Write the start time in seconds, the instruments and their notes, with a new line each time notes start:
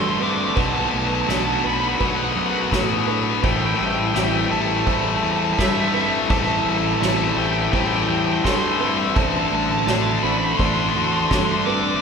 Already playing: fingered electric bass G2, distorted electric guitar D3 A3 D4, clean electric guitar A3 C4 F#4, felt piano A4
0.01 lead electric guitar C6
0.09 lead electric guitar C6
0.18 distorted electric guitar D3 A3 D4, clean electric guitar C4, felt piano B4, lead electric guitar C6, ride
0.23 lead electric guitar D6
0.29 lead electric guitar D6
0.37 lead electric guitar D6
0.45 lead electric guitar D6
0.52 distorted electric guitar B2, felt piano B4, lead electric guitar D6
0.57 fingered electric bass B1, clean electric guitar B2, distorted electric guitar F#3 B3, lead electric guitar A5, kick, ride
0.67 lead electric guitar A5
0.76 lead electric guitar A5
0.83 lead electric guitar A5
0.91 fingered electric bass B1, clean electric guitar A3, lead electric guitar A5, ride
0.98 lead electric guitar A5
1.06 lead electric guitar A5
1.15 lead electric guitar A5
1.22 lead electric guitar A5
1.27 fingered electric bass B1, distorted electric guitar B2 F#3 B3, clean electric guitar D4, felt piano D5, lead electric guitar A5, snare, ride
1.39 lead electric guitar A5
1.46 lead electric guitar A5
1.53 lead electric guitar A5
1.60 distorted electric guitar B2, felt piano B4, lead electric guitar A5
1.64 fingered electric bass B1, distorted electric guitar F#3 B3, clean electric guitar F#4, lead electric guitar B5, ride
1.73 lead electric guitar B5
1.81 lead electric guitar B5
1.88 lead electric guitar B5
1.95 lead electric guitar B5
2.00 fingered electric bass B1, distorted electric guitar B2 F#3 B3, clean electric guitar A3, felt piano B4, lead electric guitar F#5, kick, ride
2.08 lead electric guitar F#5
2.16 lead electric guitar F#5
2.24 lead electric guitar F#5
2.33 fingered electric bass F#2, clean electric guitar F#4, lead electric guitar F#5, ride
2.39 lead electric guitar F#5
2.48 lead electric guitar F#5
2.54 lead electric guitar F#5
2.61 lead electric guitar F#5
2.71 fingered electric bass A2, distorted electric guitar B2 F#3 B3, clean electric guitar A3, felt piano A4, kick, snare, ride
3.07 distorted electric guitar B2 F#3 B3, clean electric guitar D4, felt piano B4, ride
3.42 fingered electric bass A1, distorted electric guitar A2 E3 A3, clean electric guitar A2, felt piano C5, lead electric guitar G5, kick, crash
3.52 lead electric guitar G5
3.60 lead electric guitar G5
3.67 lead electric guitar G5
3.76 fingered electric bass A1, lead electric guitar G5, ride
3.80 clean electric guitar G3, lead electric guitar G5
3.91 lead electric guitar G5
3.99 lead electric guitar G5
4.08 lead electric guitar G5
4.14 fingered electric bass A1, distorted electric guitar A2 E3 A3, clean electric guitar C4, felt piano D5, lead electric guitar G5, snare, ride
4.24 lead electric guitar G5
4.31 lead electric guitar G5
4.39 lead electric guitar G5
4.46 distorted electric guitar A2, lead electric guitar G5
4.50 fingered electric bass A1, distorted electric guitar E3 A3, clean electric guitar G4, felt piano C5, lead electric guitar A5, ride
4.61 lead electric guitar A5
4.68 lead electric guitar A5
4.77 lead electric guitar A5
4.86 fingered electric bass A1, distorted electric guitar A2 E3 A3, clean electric guitar G3, felt piano C5, lead electric guitar A5, kick, ride
4.94 lead electric guitar A5
5.01 lead electric guitar A5
5.08 lead electric guitar A5
5.16 lead electric guitar A5
5.23 fingered electric bass E2, clean electric guitar G4, lead electric guitar A5, ride
5.32 lead electric guitar A5
5.39 lead electric guitar A5
5.45 lead electric guitar A5
5.53 lead electric guitar A5
5.58 fingered electric bass G2, distorted electric guitar A2 E3 A3, clean electric guitar G3, felt piano A4, lead electric guitar E5, kick, snare, ride
5.65 lead electric guitar E5
5.73 lead electric guitar E5
5.80 lead electric guitar E5
5.87 lead electric guitar E5
5.93 distorted electric guitar A2 E3 A3, clean electric guitar C4, felt piano B4, lead electric guitar E5, ride
6.01 lead electric guitar E5
6.29 fingered electric bass A1, distorted electric guitar A2 E3 A3, clean electric guitar A2, felt piano C5, lead electric guitar A5, kick, ride
6.38 lead electric guitar A5
6.45 lead electric guitar A5
6.53 lead electric guitar A5
6.62 lead electric guitar A5, ride
6.66 fingered electric bass A1, clean electric guitar G3, lead electric guitar A5
6.78 lead electric guitar A5
6.85 lead electric guitar A5
6.94 lead electric guitar A5
7.00 fingered electric bass A1, distorted electric guitar A2 E3 A3, clean electric guitar C4, felt piano D5, lead electric guitar A5, snare, ride
7.09 lead electric guitar A5
7.17 lead electric guitar A5
7.24 lead electric guitar A5
7.33 fingered electric bass A1, lead electric guitar A5
7.37 distorted electric guitar A2 E3 A3, clean electric guitar G4, felt piano C5, lead electric guitar G5, ride
7.46 lead electric guitar G5
7.53 lead electric guitar G5
7.63 lead electric guitar G5
7.72 fingered electric bass A1, distorted electric guitar A2 E3 A3, clean electric guitar G3, felt piano C5, lead electric guitar G5, kick, ride
7.80 lead electric guitar G5
7.88 lead electric guitar G5
7.96 lead electric guitar G5
8.03 lead electric guitar G5
8.09 fingered electric bass E2, clean electric guitar G4, lead electric guitar G5, ride
8.18 lead electric guitar G5
8.25 lead electric guitar G5
8.33 lead electric guitar G5
8.44 fingered electric bass G2, distorted electric guitar A2 E3 A3, clean electric guitar G3, felt piano A4, lead electric guitar C6, kick, snare, ride
8.52 lead electric guitar C6
8.59 lead electric guitar C6
8.66 lead electric guitar C6
8.72 lead electric guitar C6
8.80 distorted electric guitar A2 E3 A3, clean electric guitar C4, felt piano B4, lead electric guitar C6, ride
8.88 lead electric guitar C6
9.16 fingered electric bass A1, clean electric guitar A2, distorted electric guitar D3 A3 D4, felt piano C5, lead electric guitar A5, kick
9.23 lead electric guitar A5
9.32 lead electric guitar A5
9.39 lead electric guitar A5
9.47 lead electric guitar A5
9.51 fingered electric bass A1, clean electric guitar A3, lead electric guitar A5
9.63 lead electric guitar A5
9.71 lead electric guitar A5
9.78 lead electric guitar A5
9.87 fingered electric bass A1, distorted electric guitar D3 A3 D4, clean electric guitar C4, felt piano D5, lead electric guitar A5, snare
9.95 lead electric guitar A5
10.02 lead electric guitar A5
10.10 lead electric guitar A5
10.18 lead electric guitar A5
10.23 fingered electric bass A1, distorted electric guitar D3 A3 D4, clean electric guitar F#4, felt piano C5, lead electric guitar B5
10.30 lead electric guitar B5
10.37 lead electric guitar B5
10.45 lead electric guitar B5
10.52 lead electric guitar B5
10.57 fingered electric bass A1, distorted electric guitar D3 A3 D4, clean electric guitar A3, felt piano C5, lead electric guitar C6, kick
10.66 lead electric guitar C6
10.74 lead electric guitar C6
10.80 lead electric guitar C6
10.89 lead electric guitar C6
10.95 fingered electric bass E2, clean electric guitar F#4, lead electric guitar C6
11.05 lead electric guitar C6
11.13 lead electric guitar C6
11.21 lead electric guitar C6
11.29 fingered electric bass G2, distorted electric guitar D3 A3 D4, clean electric guitar A3, felt piano A4, lead electric guitar C6, kick, snare
11.36 lead electric guitar C6
11.45 lead electric guitar C6
11.52 lead electric guitar C6
11.61 lead electric guitar C6
11.66 distorted electric guitar D3 A3 D4, clean electric guitar C4, felt piano B4, lead electric guitar D6
11.73 lead electric guitar D6
11.80 lead electric guitar D6
11.88 lead electric guitar D6
11.96 lead electric guitar D6